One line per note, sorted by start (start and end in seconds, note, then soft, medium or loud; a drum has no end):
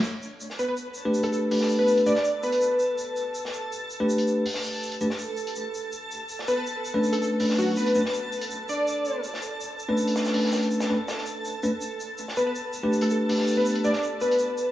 0.04 11.81 A4 medium
0.04 11.81 A5 medium
0.04 shaker medium
0.22 shaker medium
0.40 shaker medium
0.50 snare soft
0.59 0.65 B4 medium
0.59 shaker medium
0.68 0.74 B4 medium
0.77 shaker medium
0.94 shaker medium
1.05 1.49 A3 medium
1.05 1.49 D4 medium
1.05 1.49 G4 medium
1.05 1.49 B4 loud
1.14 shaker medium
1.23 1.29 A4 medium
1.23 closed hi-hat soft
1.32 1.39 A4 medium
1.32 shaker medium
1.51 2.04 A3 medium
1.51 2.04 D4 medium
1.51 2.04 G4 medium
1.51 2.04 B4 medium
1.51 open hi-hat medium
1.60 snare soft
1.69 shaker medium
1.79 2.01 B4 medium
1.88 shaker medium
1.97 closed hi-hat soft
2.06 2.12 A3 medium
2.06 2.12 D4 medium
2.06 2.12 G4 medium
2.06 2.12 B4 medium
2.06 2.29 D5 medium
2.06 shaker medium
2.15 snare medium
2.25 shaker medium
2.43 2.95 B4 medium
2.43 shaker medium
2.52 closed hi-hat soft
2.61 shaker medium
2.79 shaker medium
2.98 shaker medium
3.16 shaker medium
3.35 shaker medium
3.45 snare soft
3.53 shaker medium
3.72 shaker medium
3.90 shaker medium
4.00 4.44 A3 medium
4.00 4.44 D4 medium
4.00 4.44 G4 medium
4.00 4.44 B4 loud
4.10 shaker medium
4.18 closed hi-hat soft
4.27 shaker medium
4.46 open hi-hat medium
4.54 snare medium
4.64 shaker medium
4.83 shaker medium
4.92 closed hi-hat soft
5.01 5.07 A3 medium
5.01 5.07 D4 medium
5.01 5.07 G4 medium
5.01 5.07 B4 medium
5.01 shaker medium
5.10 snare soft
5.19 shaker medium
5.37 shaker medium
5.47 closed hi-hat soft
5.56 shaker medium
5.74 shaker medium
5.92 shaker medium
6.11 shaker medium
6.29 shaker medium
6.39 snare soft
6.48 6.54 B4 medium
6.48 shaker medium
6.57 6.63 B4 medium
6.67 shaker medium
6.85 shaker medium
6.94 7.38 A3 medium
6.94 7.38 C#4 medium
6.94 7.38 D4 medium
6.94 7.38 B4 loud
7.04 shaker medium
7.13 7.18 A4 medium
7.13 closed hi-hat soft
7.22 7.28 A4 medium
7.22 shaker medium
7.40 7.93 A3 medium
7.40 7.93 C#4 medium
7.40 7.93 D4 medium
7.40 7.93 B4 medium
7.40 open hi-hat medium
7.49 snare soft
7.59 7.75 F#4 medium
7.59 shaker medium
7.77 7.99 B4 medium
7.77 shaker medium
7.86 closed hi-hat soft
7.95 8.01 A3 medium
7.95 8.01 C#4 medium
7.95 8.01 D4 medium
7.95 8.01 B4 medium
7.95 shaker medium
8.05 snare soft
8.14 shaker medium
8.32 shaker medium
8.41 closed hi-hat soft
8.51 shaker medium
8.69 9.21 D5 medium
8.69 shaker medium
8.88 shaker medium
9.05 shaker medium
9.24 shaker medium
9.34 snare soft
9.42 shaker medium
9.61 shaker medium
9.79 shaker medium
9.89 10.32 A3 medium
9.89 10.32 C#4 medium
9.89 10.32 D4 medium
9.89 10.32 B4 loud
9.98 shaker medium
10.07 closed hi-hat soft
10.16 snare medium
10.16 shaker medium
10.25 snare loud
10.25 shaker medium
10.34 10.88 A3 medium
10.34 10.88 C#4 medium
10.34 10.88 D4 medium
10.34 10.88 B4 medium
10.34 open hi-hat medium
10.45 snare soft
10.52 snare loud
10.52 shaker medium
10.63 closed hi-hat soft
10.71 shaker medium
10.80 snare loud
10.80 shaker medium
10.90 10.96 A3 medium
10.90 10.96 C#4 medium
10.90 10.96 D4 medium
10.90 10.96 B4 medium
11.08 snare medium
11.08 shaker medium
11.18 snare soft
11.26 shaker medium
11.45 shaker medium
11.63 11.69 A3 medium
11.63 11.69 C#4 medium
11.63 11.69 D4 medium
11.63 11.69 B4 medium
11.63 shaker medium
11.81 14.72 A4 medium
11.81 14.72 A5 medium
11.81 shaker medium
12.00 shaker medium
12.18 shaker medium
12.28 snare soft
12.37 12.43 B4 medium
12.37 shaker medium
12.47 12.52 B4 medium
12.55 shaker medium
12.73 shaker medium
12.83 13.27 A3 medium
12.83 13.27 D4 medium
12.83 13.27 G4 medium
12.83 13.27 B4 loud
12.93 shaker medium
13.01 13.08 A4 medium
13.01 closed hi-hat soft
13.10 13.17 A4 medium
13.10 shaker medium
13.29 13.82 A3 medium
13.29 13.82 D4 medium
13.29 13.82 G4 medium
13.29 13.82 B4 medium
13.29 open hi-hat medium
13.38 snare soft
13.47 shaker medium
13.57 13.79 B4 medium
13.66 shaker medium
13.75 closed hi-hat soft
13.84 13.90 A3 medium
13.84 13.90 D4 medium
13.84 13.90 G4 medium
13.84 13.90 B4 medium
13.84 14.07 D5 medium
13.84 shaker medium
13.93 snare medium
14.03 shaker medium
14.21 14.72 B4 medium
14.21 shaker medium
14.31 closed hi-hat soft
14.39 shaker medium
14.58 shaker medium